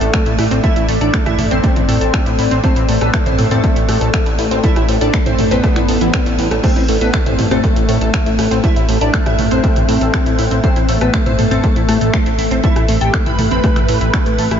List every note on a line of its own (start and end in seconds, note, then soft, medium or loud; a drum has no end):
0.00 0.10 A1 medium
0.00 0.54 A3 loud
0.00 14.60 A3 medium
0.00 0.54 A4 medium
0.00 14.60 A4 medium
0.00 0.10 A4 medium
0.00 6.62 D5 medium
0.00 0.10 A5 medium
0.00 closed hi-hat medium
0.14 0.23 A3 medium
0.14 0.23 A4 medium
0.14 finger snap loud
0.14 kick loud
0.14 closed hi-hat medium
0.26 0.35 A1 medium
0.26 0.32 E4 medium
0.26 0.32 E5 medium
0.26 closed hi-hat medium
0.39 0.48 A1 loud
0.39 0.44 E4 medium
0.39 0.44 E5 medium
0.39 cross-stick medium
0.39 open hi-hat medium
0.51 0.60 A1 medium
0.51 0.60 C4 loud
0.51 0.60 C5 medium
0.51 closed hi-hat medium
0.64 0.73 A3 loud
0.64 0.86 E4 loud
0.64 0.73 A4 medium
0.64 0.86 E5 loud
0.64 kick loud
0.64 closed hi-hat medium
0.76 0.85 A1 medium
0.76 0.82 E4 medium
0.76 0.82 E5 medium
0.76 closed hi-hat medium
0.88 0.98 A1 loud
0.88 0.98 A3 loud
0.88 0.98 A4 medium
0.88 open hi-hat loud
1.01 1.10 A1 loud
1.01 1.16 D4 medium
1.01 1.10 A4 medium
1.01 1.16 D5 medium
1.01 1.10 A5 medium
1.01 closed hi-hat medium
1.13 1.23 A3 medium
1.13 1.23 A4 medium
1.13 finger snap loud
1.13 kick loud
1.13 closed hi-hat medium
1.26 1.35 A1 medium
1.26 1.32 E4 medium
1.26 1.41 E4 medium
1.26 1.32 E5 medium
1.26 1.41 E5 medium
1.26 cross-stick medium
1.26 closed hi-hat medium
1.26 mid tom medium
1.39 1.48 A1 loud
1.39 1.48 A3 medium
1.39 1.48 A4 medium
1.39 mid tom loud
1.39 open hi-hat medium
1.51 1.60 A1 medium
1.51 1.60 C4 loud
1.51 2.54 C4 loud
1.51 1.60 C5 medium
1.51 2.54 C5 medium
1.51 closed hi-hat medium
1.64 1.76 A3 medium
1.64 1.76 A4 medium
1.64 kick loud
1.64 closed hi-hat medium
1.76 1.85 A1 medium
1.76 1.82 E4 medium
1.76 1.82 E5 medium
1.76 closed hi-hat medium
1.76 mid tom medium
1.89 1.98 A2 loud
1.89 1.94 A4 medium
1.89 1.94 A5 medium
1.89 open hi-hat loud
2.01 2.10 A1 medium
2.01 2.10 A4 medium
2.01 2.10 A5 medium
2.01 closed hi-hat medium
2.14 2.23 A3 medium
2.14 2.23 A4 medium
2.14 finger snap loud
2.14 kick loud
2.14 cross-stick medium
2.14 closed hi-hat medium
2.26 2.35 A1 medium
2.26 2.32 E4 medium
2.26 2.32 E5 medium
2.26 closed hi-hat medium
2.39 2.48 A1 loud
2.39 2.44 E4 medium
2.39 2.44 E5 medium
2.39 open hi-hat medium
2.51 2.60 A1 medium
2.51 2.60 C4 loud
2.51 2.60 C5 medium
2.51 closed hi-hat medium
2.64 2.73 A3 loud
2.64 2.86 C4 loud
2.64 2.73 A4 medium
2.64 2.86 C5 loud
2.64 kick loud
2.64 closed hi-hat medium
2.76 2.85 A1 medium
2.76 2.82 E4 medium
2.76 2.82 E5 medium
2.76 closed hi-hat medium
2.89 2.98 A1 loud
2.89 2.98 A3 loud
2.89 2.98 A4 medium
2.89 open hi-hat loud
3.01 3.10 A1 medium
3.01 3.16 B3 medium
3.01 3.10 A4 medium
3.01 3.16 B4 medium
3.01 3.10 A5 medium
3.01 cross-stick medium
3.01 closed hi-hat medium
3.14 3.23 A3 medium
3.14 3.23 A4 medium
3.14 finger snap loud
3.14 kick loud
3.14 closed hi-hat medium
3.26 3.35 A1 medium
3.26 3.41 C4 medium
3.26 3.32 E4 medium
3.26 3.41 C5 medium
3.26 3.32 E5 medium
3.26 closed hi-hat medium
3.26 mid tom medium
3.39 3.48 A1 loud
3.39 3.48 A3 medium
3.39 3.48 A4 medium
3.39 mid tom medium
3.39 open hi-hat medium
3.51 3.60 A1 medium
3.51 4.54 A3 loud
3.51 3.60 C4 loud
3.51 4.54 A4 medium
3.51 3.60 C5 medium
3.51 closed hi-hat medium
3.64 3.76 A3 medium
3.64 3.76 A4 medium
3.64 kick loud
3.64 closed hi-hat medium
3.76 3.85 A1 medium
3.76 3.82 E4 medium
3.76 3.82 E5 medium
3.76 closed hi-hat medium
3.88 3.98 A2 loud
3.88 3.94 A4 medium
3.88 3.94 A5 medium
3.88 cross-stick medium
3.88 open hi-hat loud
4.01 4.10 A1 medium
4.01 4.10 A4 medium
4.01 4.10 A5 medium
4.01 closed hi-hat medium
4.14 4.23 A3 medium
4.14 4.23 A4 medium
4.14 finger snap loud
4.14 kick loud
4.14 closed hi-hat medium
4.26 4.35 A1 medium
4.26 4.32 E4 medium
4.26 4.32 E5 medium
4.26 closed hi-hat medium
4.39 4.48 A1 loud
4.39 4.44 E4 medium
4.39 4.44 E5 medium
4.39 open hi-hat medium
4.51 4.60 A1 medium
4.51 4.60 C4 loud
4.51 4.60 C5 medium
4.51 closed hi-hat medium
4.64 4.73 A3 loud
4.64 4.86 E4 loud
4.64 4.73 A4 medium
4.64 4.86 E5 medium
4.64 kick loud
4.64 closed hi-hat medium
4.76 4.85 A1 medium
4.76 4.82 E4 medium
4.76 4.82 E5 medium
4.76 cross-stick soft
4.76 closed hi-hat medium
4.88 4.98 A1 medium
4.88 4.98 A3 loud
4.88 4.98 A4 medium
4.88 open hi-hat loud
5.01 5.10 A1 loud
5.01 5.16 D4 medium
5.01 5.10 A4 medium
5.01 5.16 D5 medium
5.01 5.10 A5 medium
5.01 closed hi-hat medium
5.14 5.23 A3 medium
5.14 5.23 A4 medium
5.14 finger snap loud
5.14 kick loud
5.14 closed hi-hat medium
5.26 5.35 A1 medium
5.26 5.41 C4 medium
5.26 5.32 E4 medium
5.26 5.41 C5 loud
5.26 5.32 E5 medium
5.26 closed hi-hat medium
5.26 mid tom medium
5.39 5.48 A1 medium
5.39 5.48 A3 medium
5.39 5.48 A4 medium
5.39 mid tom loud
5.39 open hi-hat medium
5.51 5.60 A1 medium
5.51 6.54 B3 loud
5.51 5.60 C4 loud
5.51 6.54 B4 loud
5.51 5.60 C5 medium
5.51 closed hi-hat medium
5.64 5.76 A3 medium
5.64 5.76 A4 medium
5.64 kick loud
5.64 cross-stick medium
5.64 closed hi-hat medium
5.76 5.85 A1 medium
5.76 5.82 E4 medium
5.76 5.82 E5 medium
5.76 finger snap soft
5.76 closed hi-hat medium
5.76 mid tom medium
5.89 5.98 A1 loud
5.89 5.98 A4 medium
5.89 5.98 A5 medium
5.89 open hi-hat loud
6.01 6.10 A1 medium
6.01 6.10 E3 loud
6.01 6.10 E4 medium
6.01 closed hi-hat medium
6.14 6.19 C4 loud
6.14 6.19 C5 medium
6.14 finger snap loud
6.14 kick loud
6.14 closed hi-hat medium
6.26 6.35 A1 medium
6.26 6.35 A3 medium
6.26 6.35 A4 medium
6.26 closed hi-hat medium
6.39 6.48 A1 loud
6.39 6.48 E3 medium
6.39 6.48 E4 medium
6.39 open hi-hat medium
6.51 6.60 A1 medium
6.51 6.57 A3 medium
6.51 6.57 A4 medium
6.51 cross-stick medium
6.51 closed hi-hat medium
6.64 6.73 A3 loud
6.64 6.86 C4 loud
6.64 6.73 A4 medium
6.64 6.86 C5 loud
6.64 14.60 E5 medium
6.64 kick loud
6.64 cross-stick medium
6.64 closed hi-hat medium
6.64 crash medium
6.76 6.85 A1 medium
6.76 6.82 E4 medium
6.76 6.82 E5 medium
6.76 closed hi-hat medium
6.89 6.98 A1 loud
6.89 6.98 A3 loud
6.89 6.98 A4 medium
6.89 open hi-hat loud
7.01 7.10 A1 loud
7.01 7.16 B3 medium
7.01 7.10 A4 medium
7.01 7.16 B4 medium
7.01 7.10 A5 medium
7.01 closed hi-hat medium
7.14 7.23 A3 medium
7.14 7.23 A4 medium
7.14 finger snap loud
7.14 kick loud
7.14 closed hi-hat medium
7.26 7.35 A1 medium
7.26 7.41 C4 medium
7.26 7.32 E4 medium
7.26 7.41 C5 medium
7.26 7.32 E5 medium
7.26 closed hi-hat medium
7.26 mid tom medium
7.39 7.48 A1 loud
7.39 7.48 A3 medium
7.39 7.48 A4 medium
7.39 mid tom medium
7.39 open hi-hat medium
7.51 7.60 A1 medium
7.51 8.54 A3 loud
7.51 7.60 C4 loud
7.51 8.54 A4 medium
7.51 7.60 C5 medium
7.51 cross-stick medium
7.51 closed hi-hat medium
7.64 7.76 A3 medium
7.64 7.76 A4 medium
7.64 kick loud
7.64 closed hi-hat medium
7.76 7.85 A1 loud
7.76 7.82 E4 medium
7.76 7.82 E5 medium
7.76 closed hi-hat medium
7.89 7.98 A2 loud
7.89 7.94 A4 medium
7.89 7.94 A5 medium
7.89 open hi-hat loud
8.01 8.10 A1 medium
8.01 8.10 A4 medium
8.01 8.10 A5 medium
8.01 closed hi-hat medium
8.14 8.23 A3 medium
8.14 finger snap loud
8.14 kick loud
8.14 closed hi-hat medium
8.26 8.35 A1 medium
8.26 8.32 E4 medium
8.26 8.32 E5 medium
8.26 closed hi-hat medium
8.39 8.48 A1 loud
8.39 8.44 E4 medium
8.39 8.44 E5 medium
8.39 cross-stick soft
8.39 open hi-hat medium
8.51 8.60 A1 medium
8.51 8.60 C4 loud
8.51 8.60 C5 medium
8.51 closed hi-hat medium
8.64 8.73 A3 loud
8.64 8.86 E4 loud
8.64 8.73 A4 medium
8.64 8.86 E5 loud
8.64 kick loud
8.64 closed hi-hat medium
8.76 8.85 A1 medium
8.76 8.82 E4 medium
8.76 8.82 E5 medium
8.76 closed hi-hat medium
8.89 8.98 A1 loud
8.89 8.98 A3 loud
8.89 8.98 A4 medium
8.89 open hi-hat loud
9.01 9.10 A1 loud
9.01 9.16 D4 medium
9.01 9.10 A4 medium
9.01 9.16 D5 medium
9.01 9.10 A5 medium
9.01 closed hi-hat medium
9.14 9.23 A3 medium
9.14 9.23 A4 medium
9.14 finger snap loud
9.14 kick loud
9.14 closed hi-hat medium
9.26 9.35 A1 medium
9.26 9.41 E4 medium
9.26 9.32 E4 medium
9.26 9.32 E5 medium
9.26 9.41 E5 medium
9.26 cross-stick medium
9.26 closed hi-hat medium
9.26 mid tom medium
9.39 9.48 A1 medium
9.39 9.48 A3 medium
9.39 9.48 A4 medium
9.39 mid tom medium
9.39 open hi-hat loud
9.51 9.60 A1 medium
9.51 9.60 C4 loud
9.51 10.54 C4 loud
9.51 9.60 C5 medium
9.51 10.54 C5 loud
9.51 closed hi-hat medium
9.64 9.76 A3 medium
9.64 9.76 A4 medium
9.64 kick loud
9.64 closed hi-hat medium
9.76 9.85 A1 medium
9.76 9.82 E4 medium
9.76 9.82 E5 medium
9.76 closed hi-hat medium
9.76 mid tom medium
9.89 9.98 A2 loud
9.89 9.94 A4 medium
9.89 9.94 A5 medium
9.89 open hi-hat loud
10.01 10.10 A1 medium
10.01 10.10 A4 medium
10.01 10.10 A5 medium
10.01 closed hi-hat medium
10.14 10.23 A3 medium
10.14 finger snap loud
10.14 kick loud
10.14 cross-stick medium
10.14 closed hi-hat medium
10.26 10.35 A1 medium
10.26 10.32 E4 medium
10.26 10.32 E5 medium
10.26 closed hi-hat medium
10.39 10.48 A1 loud
10.39 10.44 E4 medium
10.39 10.44 E5 medium
10.39 open hi-hat loud
10.51 10.60 A1 medium
10.51 10.60 C4 loud
10.51 10.60 C5 medium
10.51 closed hi-hat medium
10.64 10.73 A3 loud
10.64 10.86 C4 loud
10.64 10.73 A4 medium
10.64 10.86 C5 loud
10.64 kick loud
10.64 closed hi-hat medium
10.76 10.85 A1 medium
10.76 10.82 E4 medium
10.76 10.82 E5 medium
10.76 closed hi-hat medium
10.89 10.98 A1 loud
10.89 10.98 A3 loud
10.89 10.98 A4 medium
10.89 open hi-hat loud
11.01 11.10 A1 loud
11.01 11.16 B3 medium
11.01 11.10 A4 medium
11.01 11.16 B4 medium
11.01 11.10 A5 medium
11.01 cross-stick medium
11.01 closed hi-hat medium
11.14 11.23 A3 medium
11.14 11.23 A4 medium
11.14 finger snap loud
11.14 kick loud
11.14 closed hi-hat medium
11.26 11.35 A1 medium
11.26 11.41 C4 medium
11.26 11.32 E4 medium
11.26 11.41 C5 medium
11.26 11.32 E5 medium
11.26 closed hi-hat medium
11.26 mid tom medium
11.39 11.48 A1 medium
11.39 11.48 A3 medium
11.39 11.48 A4 medium
11.39 mid tom loud
11.39 open hi-hat loud
11.51 11.60 A1 medium
11.51 12.54 A3 loud
11.51 11.60 C4 loud
11.51 12.54 A4 medium
11.51 11.60 C5 medium
11.51 closed hi-hat medium
11.64 11.76 A3 medium
11.64 11.76 A4 medium
11.64 kick loud
11.64 closed hi-hat medium
11.76 11.85 A1 medium
11.76 11.82 E4 medium
11.76 11.82 E5 medium
11.76 closed hi-hat medium
11.89 11.98 A2 loud
11.89 11.94 A4 medium
11.89 11.94 A5 medium
11.89 cross-stick medium
11.89 open hi-hat loud
12.01 12.10 A1 medium
12.01 12.10 A4 medium
12.01 12.10 A5 medium
12.01 closed hi-hat medium
12.14 12.23 A3 medium
12.14 finger snap loud
12.14 kick loud
12.14 closed hi-hat medium
12.26 12.35 A1 medium
12.26 12.32 E4 medium
12.26 12.32 E5 medium
12.26 closed hi-hat medium
12.39 12.48 A1 loud
12.39 12.44 E4 medium
12.39 12.44 E5 medium
12.39 open hi-hat loud
12.51 12.60 A1 loud
12.51 12.60 C4 loud
12.51 12.60 C5 medium
12.51 closed hi-hat medium
12.64 12.73 A3 loud
12.64 12.86 E4 loud
12.64 12.73 A4 medium
12.64 12.86 E5 loud
12.64 kick loud
12.64 closed hi-hat medium
12.76 12.85 A1 medium
12.76 12.82 E4 medium
12.76 12.82 E5 medium
12.76 cross-stick medium
12.76 closed hi-hat medium
12.89 12.98 A1 loud
12.89 12.98 A3 loud
12.89 12.98 A4 medium
12.89 open hi-hat loud
13.01 13.10 A1 medium
13.01 13.16 G4 medium
13.01 13.10 A4 medium
13.01 13.16 G5 medium
13.01 13.10 A5 medium
13.01 closed hi-hat medium
13.14 13.23 A3 medium
13.14 13.23 A4 medium
13.14 finger snap loud
13.14 kick loud
13.14 closed hi-hat medium
13.26 13.35 A1 medium
13.26 13.32 E4 medium
13.26 13.41 B4 medium
13.26 13.32 E5 medium
13.26 13.41 B5 medium
13.26 closed hi-hat medium
13.26 mid tom medium
13.39 13.48 A1 medium
13.39 13.48 A3 medium
13.39 13.48 A4 medium
13.39 mid tom loud
13.39 open hi-hat loud
13.51 13.60 A1 medium
13.51 13.60 C4 loud
13.51 14.54 B4 loud
13.51 13.60 C5 medium
13.51 14.54 B5 medium
13.51 closed hi-hat medium
13.64 13.76 A3 medium
13.64 13.76 A4 medium
13.64 kick loud
13.64 cross-stick medium
13.64 closed hi-hat medium
13.76 13.85 A1 medium
13.76 13.82 E4 medium
13.76 13.82 E5 medium
13.76 finger snap soft
13.76 closed hi-hat medium
13.76 mid tom medium
13.89 13.98 A2 loud
13.89 13.98 A3 loud
13.89 13.98 A4 medium
13.89 open hi-hat loud
14.01 14.10 A1 medium
14.01 14.07 E4 medium
14.01 14.07 E5 medium
14.01 closed hi-hat medium
14.14 14.23 A3 medium
14.14 14.23 A4 medium
14.14 finger snap loud
14.14 kick loud
14.14 closed hi-hat medium
14.26 14.35 A1 medium
14.26 14.35 A3 medium
14.26 14.35 A4 medium
14.26 closed hi-hat soft
14.39 14.48 A1 loud
14.39 14.44 A4 medium
14.39 14.44 A5 medium
14.39 open hi-hat medium
14.51 14.60 A1 medium
14.51 14.60 E4 medium
14.51 14.60 E5 medium
14.51 cross-stick medium
14.51 closed hi-hat medium